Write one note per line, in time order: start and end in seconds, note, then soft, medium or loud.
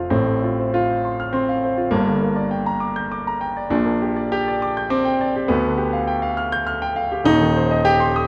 0.00 0.13 F1 medium
0.00 0.12 F2 medium
0.00 0.12 C3 medium
0.00 0.13 A3 medium
0.00 0.12 F4 medium
0.00 0.12 C5 medium
0.00 0.12 F5 medium
0.00 0.13 C6 medium
0.00 0.12 F6 medium
0.10 1.88 A1 medium
0.10 1.88 A2 medium
0.10 0.73 C4 medium
0.27 0.52 A3 medium
0.44 0.68 F4 medium
0.59 0.83 C5 medium
0.74 1.33 F4 medium
0.74 0.98 F5 medium
0.90 1.13 C5 medium
1.05 1.28 C6 medium
1.20 1.43 F6 medium
1.33 1.92 C4 medium
1.33 1.57 C6 medium
1.49 1.72 F5 medium
1.63 1.87 C5 medium
1.78 1.92 F4 medium
1.91 3.66 G1 medium
1.91 3.67 G2 medium
1.91 3.70 A#3 loud
2.07 2.31 D3 medium
2.21 2.45 A#4 medium
2.36 2.60 D5 medium
2.51 2.75 G5 medium
2.66 2.91 A#5 medium
2.80 3.05 D6 medium
2.96 3.20 G6 medium
3.12 3.35 D6 medium
3.27 3.51 A#5 medium
3.41 3.65 G5 medium
3.57 3.71 D5 medium
3.70 5.45 A#1 medium
3.70 5.46 A#2 medium
3.70 4.32 D4 loud
3.85 4.10 A#3 medium
4.02 4.26 G4 medium
4.16 4.41 D5 medium
4.32 4.91 G4 loud
4.32 4.56 G5 medium
4.48 4.71 D5 medium
4.62 4.85 D6 medium
4.77 5.00 G6 medium
4.90 5.49 C4 loud
4.90 5.14 D6 medium
5.05 5.29 G5 medium
5.21 5.44 D5 medium
5.36 5.50 G4 medium
5.48 7.22 D2 medium
5.48 7.26 B3 loud
5.63 5.87 D3 medium
5.78 6.02 G4 medium
5.93 6.17 F5 medium
6.08 6.31 G5 medium
6.22 6.46 F5 medium
6.37 6.61 F6 medium
6.52 6.76 G6 medium
6.67 6.91 F6 medium
6.82 7.06 G5 medium
6.96 7.20 F5 medium
7.12 7.26 G4 medium
7.25 8.27 D#1 loud
7.25 8.27 D#2 loud
7.25 7.85 D#4 loud
7.41 7.65 D#3 medium
7.56 7.80 C5 medium
7.71 7.95 D#5 medium
7.85 8.27 G4 loud
7.85 8.10 G5 medium
8.00 8.24 C6 medium
8.16 8.27 D#6 medium